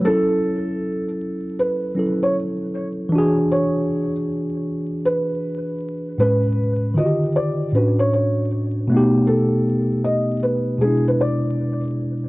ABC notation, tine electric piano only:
X:1
M:4/4
L:1/8
Q:"Swing 16ths" 1/4=78
K:Emix
V:1 name="Tine electric piano"
[F,CEA]4- [F,CEA] [F,CEA]3 | [E,DFG]8 | [A,,G,CB]2 [D,^D,^EF=G]2 [A,,C=DF]3 [B,,A,B,^DG]- | [B,,A,B,^D=G]4 [B,,^G,=DE]4 |]